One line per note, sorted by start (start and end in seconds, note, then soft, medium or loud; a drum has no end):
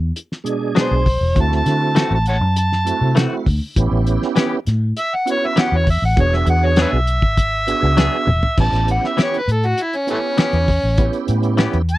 0.00 0.11 E2 medium
0.16 closed hi-hat medium
0.32 snare soft
0.44 1.07 B2 medium
0.44 1.07 G#3 medium
0.44 1.07 D4 medium
0.44 1.08 G#4 loud
0.44 closed hi-hat medium
0.75 0.94 F#3 medium
0.75 0.94 B3 medium
0.75 0.94 D4 medium
0.75 0.94 G#4 medium
0.75 snare loud
0.75 closed hi-hat medium
0.80 1.36 C5 medium
0.91 1.16 B1 medium
1.06 kick medium
1.06 open hi-hat medium
1.21 1.33 E1 medium
1.34 1.61 D2 loud
1.34 2.18 A3 medium
1.34 2.19 C4 medium
1.34 2.19 E4 medium
1.34 2.19 F#4 medium
1.34 kick loud
1.34 closed hi-hat medium
1.40 1.52 A5 medium
1.52 2.12 A5 loud
1.52 snare soft
1.66 2.03 D3 medium
1.66 snare soft
1.66 closed hi-hat medium
1.95 2.14 E3 medium
1.95 2.14 A3 medium
1.95 2.14 C4 medium
1.95 2.15 F#4 medium
1.95 snare loud
1.95 closed hi-hat medium
2.11 2.41 A1 medium
2.11 2.27 A5 medium
2.26 2.36 C#5 medium
2.26 2.37 F#5 medium
2.26 2.56 A5 loud
2.26 closed hi-hat medium
2.41 2.91 F#2 medium
2.56 3.16 A5 loud
2.56 closed hi-hat medium
2.72 snare soft
2.85 3.48 A3 medium
2.85 3.48 C4 medium
2.85 3.48 E4 medium
2.85 3.49 F#4 medium
2.85 closed hi-hat medium
3.01 3.26 C3 medium
3.15 3.34 E3 medium
3.15 3.34 A3 medium
3.15 3.35 C4 medium
3.15 3.35 F#4 medium
3.15 snare loud
3.15 closed hi-hat medium
3.46 3.59 D2 medium
3.46 kick medium
3.46 open hi-hat medium
3.76 3.89 A1 loud
3.76 4.60 B3 loud
3.76 4.60 C#4 medium
3.76 4.60 E4 medium
3.76 4.60 G4 loud
3.76 kick loud
3.76 closed hi-hat medium
3.92 4.16 A1 medium
4.07 closed hi-hat medium
4.22 snare soft
4.36 4.54 E3 medium
4.36 4.55 B3 medium
4.36 4.55 C#4 loud
4.36 4.55 G4 loud
4.36 snare loud
4.36 closed hi-hat medium
4.67 4.92 A2 loud
4.67 snare soft
4.67 closed hi-hat medium
4.97 5.16 E5 loud
4.97 closed hi-hat medium
5.15 5.27 F#5 loud
5.26 5.89 B3 medium
5.26 5.89 C#4 medium
5.26 5.89 E4 medium
5.26 5.89 F#4 medium
5.26 closed hi-hat medium
5.31 5.48 C#5 loud
5.46 5.62 E5 loud
5.56 5.75 E3 medium
5.56 5.75 B3 medium
5.56 5.75 C#4 medium
5.56 5.76 G4 medium
5.56 snare loud
5.56 closed hi-hat medium
5.61 5.77 F#5 loud
5.72 5.97 E2 medium
5.76 5.88 C#5 medium
5.87 6.03 E5 loud
5.87 kick medium
5.87 open hi-hat medium
6.02 6.15 A1 medium
6.02 6.18 F#5 loud
6.16 6.42 E1 loud
6.16 7.00 B3 medium
6.16 7.00 D4 medium
6.16 7.00 F#4 medium
6.16 7.00 G#4 medium
6.16 6.37 C#5 loud
6.16 kick loud
6.16 closed hi-hat medium
6.33 6.48 E5 loud
6.33 snare soft
6.46 6.84 E2 medium
6.46 6.67 F#5 loud
6.46 closed hi-hat medium
6.66 6.78 C#5 loud
6.76 6.95 F#3 medium
6.76 6.96 B3 medium
6.76 6.96 D4 medium
6.76 6.96 G#4 loud
6.76 snare loud
6.76 closed hi-hat medium
6.82 6.88 B4 medium
6.82 6.90 C#5 medium
6.82 8.56 E5 loud
6.93 7.22 B1 medium
7.07 closed hi-hat medium
7.22 7.72 G#1 medium
7.22 kick medium
7.37 kick medium
7.37 closed hi-hat medium
7.67 8.30 B3 loud
7.67 8.30 D4 medium
7.67 8.30 F#4 medium
7.67 8.30 G#4 loud
7.67 closed hi-hat medium
7.83 8.08 C#2 medium
7.97 8.15 F#3 medium
7.97 8.16 B3 medium
7.97 8.16 D4 medium
7.97 8.16 G#4 loud
7.97 snare loud
7.97 closed hi-hat medium
8.27 8.40 E1 medium
8.27 high tom medium
8.43 floor tom medium
8.57 8.70 A1 medium
8.57 9.41 B3 medium
8.57 9.41 C#4 medium
8.57 9.41 E4 medium
8.57 9.41 G4 medium
8.57 8.88 A5 loud
8.57 kick loud
8.57 crash loud
8.72 8.98 A1 medium
8.72 snare soft
8.72 closed hi-hat soft
8.88 9.08 F#5 medium
8.88 closed hi-hat medium
9.04 9.19 E5 medium
9.04 snare soft
9.17 9.36 E3 medium
9.17 9.36 B3 medium
9.17 9.36 C#4 medium
9.17 9.37 G4 medium
9.17 snare loud
9.17 closed hi-hat medium
9.22 9.39 C#5 medium
9.34 9.50 B4 loud
9.34 closed hi-hat soft
9.48 9.73 A2 medium
9.48 closed hi-hat medium
9.52 9.68 A4 medium
9.63 9.84 F#4 loud
9.63 closed hi-hat soft
9.78 closed hi-hat medium
9.82 9.98 E4 medium
9.93 10.09 C#4 medium
9.93 closed hi-hat soft
10.07 10.17 E3 medium
10.07 10.19 A3 medium
10.07 10.70 B3 medium
10.07 10.70 C#4 medium
10.07 11.27 C#4 loud
10.07 10.71 E4 medium
10.07 10.71 G4 medium
10.07 closed hi-hat medium
10.38 10.56 E3 medium
10.38 10.56 B3 medium
10.38 10.57 C#4 medium
10.38 10.57 G4 medium
10.38 snare loud
10.38 closed hi-hat medium
10.53 10.78 E2 medium
10.53 closed hi-hat soft
10.68 kick medium
10.68 open hi-hat medium
10.83 11.08 A1 medium
10.98 11.82 B3 medium
10.98 11.82 C#4 medium
10.98 11.82 E4 medium
10.98 11.82 G4 loud
10.98 kick loud
10.98 closed hi-hat medium
11.13 closed hi-hat soft
11.28 11.66 A2 medium
11.28 closed hi-hat medium
11.43 closed hi-hat soft
11.57 11.76 E3 medium
11.57 11.77 B3 loud
11.57 11.77 C#4 loud
11.57 11.77 G4 loud
11.57 snare loud
11.57 closed hi-hat medium
11.73 11.98 E2 medium
11.73 closed hi-hat soft
11.89 11.98 A5 loud
11.89 closed hi-hat medium